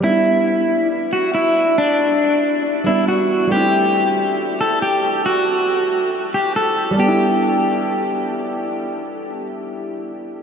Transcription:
<<
  \new Staff \with { instrumentName = "Clean electric guitar" } { \time 4/4 \key e \minor \tempo 4 = 138 e'2 r8 fis'8 e'4 | d'2 r8 e'8 fis'4 | g'2 r8 a'8 g'4 | fis'2 r8 g'8 a'4 |
g'2. r4 | r1 | }
  \new Staff \with { instrumentName = "Grand piano" } { \time 4/4 \key e \minor <g b d' e'>1~ | <g b d' e'>2~ <g b d' e'>8 <g b d' e'>4. | <g a c' e'>1~ | <g a c' e'>1 |
<g b d' e'>1~ | <g b d' e'>1 | }
>>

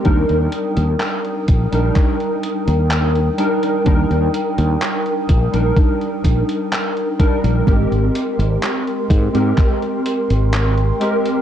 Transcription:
<<
  \new Staff \with { instrumentName = "Ambient pad" } { \time 4/4 \key ees \major \tempo 4 = 63 <bes' g'' ees'''>1~ | <bes' g'' ees'''>1 | <bes' g'' c'''>1 | }
  \new Staff \with { instrumentName = "Synth keys" } { \time 4/4 \key ees \major <g d' ees' bes'>4.~ <g d' ees' bes'>16 <g d' ees' bes'>4.~ <g d' ees' bes'>16 <g d' ees' bes'>8 | <g d' ees' bes'>4.~ <g d' ees' bes'>16 <g d' ees' bes'>4.~ <g d' ees' bes'>16 <g d' ees' bes'>8 | <aes c' g' bes'>4.~ <aes c' g' bes'>16 <aes c' g' bes'>4.~ <aes c' g' bes'>16 <aes c' g' bes'>8 | }
  \new Staff \with { instrumentName = "Fretless electric bass" } { \clef bass \time 4/4 \key ees \major ees,16 ees,16 r16 ees,16 r8 bes,,16 bes,,16 r8. ees,8. r8 | ees,16 ees,16 r16 ees,16 r8 bes,,16 bes,,16 r8 bes,,16 r4 bes,,16 | aes,,16 aes,,16 r16 aes,,16 r8 aes,16 aes,16 r8. aes,,8. r8 | }
  \new DrumStaff \with { instrumentName = "Drums" } \drummode { \time 4/4 <hh bd>16 hh16 hh16 hh16 <hc hh>16 hh16 <hh bd>16 hh16 <hc hh bd>16 hh16 hh16 hh16 <hc hh>16 hh16 hh16 hh16 | <hh bd>16 hh16 hh16 hh16 <hc hh>16 hh16 <hh bd>16 hh16 <hh bd>16 hh16 <hh bd>16 hh16 <hc hh>16 hh16 <hh bd>16 hh16 | <hh bd>16 hh16 hh16 hh16 <hc hh>16 hh16 <hh bd>16 hh16 <hc hh bd>16 hh16 hh16 hh16 <hc hh>16 hh16 hh16 hh16 | }
>>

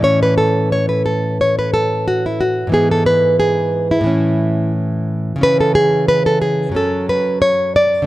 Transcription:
\new Staff \with { instrumentName = "Nylon-string guitar" } { \time 4/4 \key a \major \tempo 4 = 89 << { cis''16 b'16 a'8 cis''16 b'16 a'8 cis''16 b'16 a'8 fis'16 e'16 fis'8 | gis'16 a'16 b'8 gis'8. e'4~ e'16 r4 | \key cis \phrygian b'16 a'16 gis'8 b'16 a'16 gis'8 a'8 b'8 cis''8 d''8 | } \\ { <a, e cis'>1 | <gis, e b>2 <a, e cis'>2 | <cis e cis'>2 <fis, fis cis'>2 | } >> }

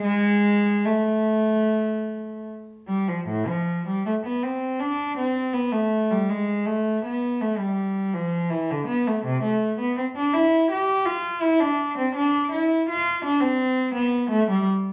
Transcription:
\new Staff \with { instrumentName = "Cello" } { \time 4/4 \key a \minor \tempo 4 = 82 gis4 a2 r8 g16 f16 | a,16 f8 g16 a16 b16 c'8 d'8 c'8 b16 a8 g16 | gis8 a8 b8 a16 g8. f8 e16 d16 b16 a16 | c16 a8 b16 c'16 d'16 e'8 g'8 f'8 e'16 d'8 c'16 |
d'8 e'8 f'8 d'16 c'8. b8 a16 g16 r8 | }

